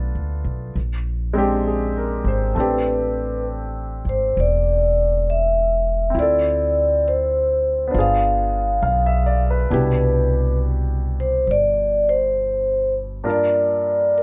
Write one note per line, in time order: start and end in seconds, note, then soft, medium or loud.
0.00 0.75 A3 soft
0.00 0.75 B3 soft
0.00 0.76 D4 soft
0.00 0.77 F4 soft
0.15 0.43 D2 soft
0.44 0.73 B1 medium
0.75 2.21 A#1 medium
1.33 2.55 G#3 soft
1.33 2.56 C4 soft
1.33 2.57 D4 soft
1.38 2.57 G4 medium
1.67 2.21 G#4 soft
1.97 2.42 A#4 soft
2.24 2.53 G#1 medium
2.24 2.73 C5 soft
2.55 4.01 A1 medium
2.55 6.14 A3 soft
2.55 6.09 C4 soft
2.59 6.17 D4 soft
2.59 6.17 G4 soft
2.59 3.44 B4 medium
4.05 4.33 G#1 medium
4.09 4.39 C5 medium
4.37 6.11 E1 medium
4.37 5.30 D5 medium
5.30 6.13 E5 medium
6.10 7.91 C4 soft
6.14 7.89 D2 medium
6.14 7.93 E4 soft
6.14 7.93 F4 soft
6.19 7.97 A4 soft
6.19 7.09 D5 medium
7.08 7.98 C5 medium
7.88 9.68 B3 soft
7.88 9.69 D4 soft
7.94 8.79 G1 medium
7.94 9.72 F4 soft
7.99 9.74 G#4 soft
7.99 9.40 F5 medium
8.82 9.67 B1 medium
8.82 9.23 F5 soft
9.06 9.43 E5 soft
9.26 9.54 D5 soft
9.50 9.81 B4 soft
9.70 11.44 C2 medium
9.70 13.25 B2 soft
9.70 13.23 D4 soft
9.70 13.25 E4 soft
9.70 13.26 G4 soft
9.70 10.57 B4 medium
11.20 11.50 C5 medium
11.47 13.21 G1 medium
11.51 12.09 D5 medium
12.09 12.92 C5 medium
13.24 14.23 G2 soft
13.24 14.23 A#3 soft
13.24 14.23 D4 soft
13.24 14.23 F4 soft
13.24 14.23 A#4 soft
13.30 14.19 D5 medium
14.18 14.23 A#4 medium